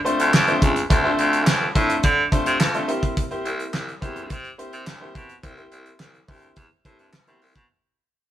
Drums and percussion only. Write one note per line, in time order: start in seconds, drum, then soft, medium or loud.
0.06 closed hi-hat medium
0.20 closed hi-hat medium
0.34 snare loud
0.34 clap loud
0.48 closed hi-hat soft
0.62 kick loud
0.62 closed hi-hat medium
0.76 closed hi-hat medium
0.90 kick loud
0.90 closed hi-hat medium
1.19 closed hi-hat medium
1.33 closed hi-hat medium
1.47 snare loud
1.47 clap loud
1.76 kick loud
1.76 closed hi-hat medium
1.90 closed hi-hat medium
2.03 kick loud
2.03 closed hi-hat medium
2.32 kick loud
2.32 closed hi-hat medium
2.46 closed hi-hat medium
2.60 snare loud
2.60 clap loud
2.74 closed hi-hat soft
2.89 closed hi-hat medium
3.03 kick medium
3.03 closed hi-hat medium
3.17 kick loud
3.17 closed hi-hat medium
3.31 closed hi-hat soft
3.45 closed hi-hat medium
3.60 closed hi-hat medium
3.74 snare loud
3.74 clap loud
3.88 closed hi-hat soft
4.02 kick medium
4.02 closed hi-hat medium
4.16 closed hi-hat medium
4.30 kick loud
4.30 closed hi-hat medium
4.44 closed hi-hat soft
4.59 closed hi-hat medium
4.73 closed hi-hat medium
4.87 snare loud
4.87 clap loud
5.15 kick loud
5.15 closed hi-hat medium
5.29 closed hi-hat medium
5.43 kick loud
5.43 closed hi-hat medium
5.58 closed hi-hat soft
5.72 closed hi-hat medium
5.86 closed hi-hat medium
6.00 snare loud
6.00 clap loud
6.14 closed hi-hat soft
6.28 kick loud
6.28 open hi-hat medium
6.42 closed hi-hat medium
6.56 kick loud
6.56 closed hi-hat medium
6.85 kick medium
6.85 closed hi-hat medium
6.99 closed hi-hat medium
7.13 snare loud
7.13 clap loud
7.27 closed hi-hat soft
7.42 open hi-hat medium
7.56 kick medium
7.56 closed hi-hat medium